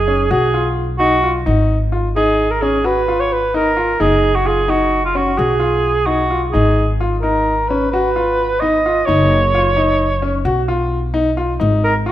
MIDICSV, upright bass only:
0, 0, Header, 1, 2, 480
1, 0, Start_track
1, 0, Tempo, 460829
1, 1531, Time_signature, 11, 3, 24, 8
1, 12621, End_track
2, 0, Start_track
2, 0, Title_t, "Upright bass"
2, 0, Program_c, 0, 32
2, 0, Note_on_c, 0, 30, 68
2, 304, Note_off_c, 0, 30, 0
2, 320, Note_on_c, 0, 35, 74
2, 1501, Note_off_c, 0, 35, 0
2, 1528, Note_on_c, 0, 32, 69
2, 4126, Note_off_c, 0, 32, 0
2, 4175, Note_on_c, 0, 30, 66
2, 5583, Note_off_c, 0, 30, 0
2, 5612, Note_on_c, 0, 35, 73
2, 6787, Note_off_c, 0, 35, 0
2, 6820, Note_on_c, 0, 32, 71
2, 9416, Note_off_c, 0, 32, 0
2, 9464, Note_on_c, 0, 30, 72
2, 10871, Note_off_c, 0, 30, 0
2, 10886, Note_on_c, 0, 35, 80
2, 12067, Note_off_c, 0, 35, 0
2, 12092, Note_on_c, 0, 32, 82
2, 12621, Note_off_c, 0, 32, 0
2, 12621, End_track
0, 0, End_of_file